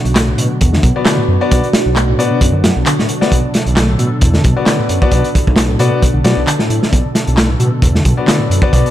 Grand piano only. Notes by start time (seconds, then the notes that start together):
0.96 B3 F#4 D5
1.41 B3 F#4 D5
1.51 B3 F#4 D5
2.19 B3 F#4 D5
3.21 B3 F#4 D5
4.56 B3 F#4 D5
5.02 B3 F#4 D5
5.12 B3 F#4 D5
5.80 B3 F#4 D5
6.24 B3 F#4 D5
8.17 B3 F#4 D5
8.62 B3 F#4 D5
8.73 B3 F#4 D5